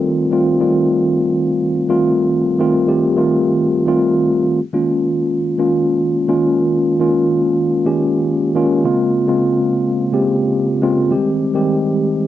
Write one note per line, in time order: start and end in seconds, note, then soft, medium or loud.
0.00 0.21 D#3 medium
0.00 0.21 G3 medium
0.00 0.21 A3 medium
0.00 0.22 C4 medium
0.00 0.22 F4 medium
0.00 4.60 A4 medium
0.32 0.53 D#3 medium
0.32 0.53 G3 medium
0.32 0.53 A3 medium
0.32 0.53 C4 medium
0.32 0.54 F4 medium
0.60 1.43 D#3 medium
0.60 1.43 G3 medium
0.60 1.43 A3 medium
0.60 1.43 C4 medium
0.60 1.43 F4 medium
1.89 2.40 D#3 medium
1.89 2.40 G3 medium
1.89 2.40 A3 medium
1.89 2.41 C4 medium
1.89 2.41 F4 loud
2.59 2.80 D#3 loud
2.59 2.81 G3 medium
2.59 2.81 A3 medium
2.59 2.81 C4 medium
2.59 2.81 F4 loud
2.87 3.09 D#3 medium
2.87 3.09 G3 medium
2.87 3.09 A3 medium
2.87 3.09 C4 medium
2.87 3.09 G4 loud
3.16 3.68 D#3 medium
3.16 3.68 G3 medium
3.16 3.68 A3 medium
3.16 3.68 C4 medium
3.16 3.69 F4 loud
3.87 4.58 D#3 medium
3.87 4.58 G3 medium
3.87 4.58 A3 medium
3.87 4.58 C4 medium
3.87 4.58 F4 loud
4.73 5.34 D#3 medium
4.73 5.35 G#3 medium
4.73 5.35 A#3 medium
4.73 5.35 C#4 medium
4.73 5.35 F4 medium
5.58 6.09 D#3 medium
5.58 6.09 G#3 medium
5.58 6.10 A#3 medium
5.58 6.10 C#4 medium
5.58 6.10 F4 medium
6.28 6.80 D#3 medium
6.28 6.80 G#3 medium
6.28 6.80 A#3 medium
6.28 6.80 C#4 medium
6.28 6.81 F4 loud
7.00 7.61 D#3 medium
7.00 7.61 G#3 medium
7.00 7.61 A#3 medium
7.00 7.62 C#4 medium
7.00 7.62 F4 medium
7.85 8.36 D#3 medium
7.85 8.36 G#3 medium
7.85 8.37 A#3 medium
7.85 8.37 C#4 medium
7.85 8.37 G4 loud
8.55 8.84 D#3 loud
8.55 8.84 G#3 medium
8.55 8.84 A#3 medium
8.55 8.84 C#4 loud
8.55 8.84 F4 loud
8.84 9.18 C#3 medium
8.84 9.19 G#3 medium
8.84 9.19 A#3 medium
8.84 9.19 C4 medium
8.84 9.19 F4 loud
9.27 9.88 C#3 medium
9.27 9.88 G#3 medium
9.27 9.89 A#3 medium
9.27 9.89 C4 medium
9.27 9.89 F4 loud
10.12 10.63 C#3 medium
10.12 10.63 G#3 medium
10.12 10.63 A#3 medium
10.12 10.64 C4 medium
10.12 10.64 G4 loud
10.82 11.10 C#3 medium
10.82 11.10 G#3 medium
10.82 11.11 A#3 medium
10.82 11.10 C4 loud
10.82 11.11 F4 loud
11.10 11.45 D#3 medium
11.10 11.45 G3 medium
11.10 11.45 G#3 medium
11.10 11.45 C4 medium
11.10 11.45 G4 medium
11.54 12.15 D#3 medium
11.54 12.15 G3 medium
11.54 12.15 G#3 medium
11.54 12.15 C4 medium
11.54 12.15 G4 medium